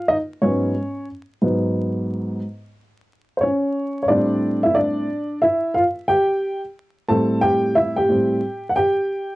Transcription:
0.09 D#4 D#5
0.42 G#2 F#3 B3 C#4 C#5
1.42 G#2 F#3 B3
3.37 C5 C#5
3.43 C#4
4.03 C#5
4.08 A2 G3 C4 D4 D5
4.63 E4 E5
4.75 D4 D5
5.42 E4 E5
5.74 F4 F5
6.08 G4 G5
7.08 A2 G3 C4 A4 A5
7.41 G4 G5
7.75 E4 E5
7.96 G4 G5
8.09 A2 G3 C4
8.69 F#5
8.76 G4 G5

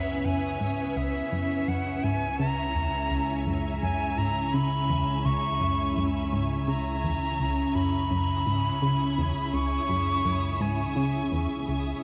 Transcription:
Already playing: C#2 F#2 C#4 B4 C#5 E5 D#6
0.24 F#2 G#5
0.60 G#2
0.96 C#2 E4 E5
1.32 F#2
1.68 F#2 F#5
2.03 G#2 G#5
2.22 G#5
2.39 C#3 A#5
2.75 E2
3.10 C#2
3.46 F#2
3.82 F#2 G#5
4.18 G#2 A#5
4.54 C#3 B5
4.89 E2
5.25 C#2 C#6
5.60 F#2
5.96 F#2
6.32 G#2
6.68 C#3 A#5 D#6
7.04 E2
7.39 C#2
7.75 F#2 B5
7.93 G#5
8.11 F#2
8.46 G#2
8.82 C#3
9.18 E2
9.53 C#2 C#6
9.89 F#2
10.25 F#2
10.60 G#2 G#5
10.96 C#3
11.32 E2
11.68 C#2

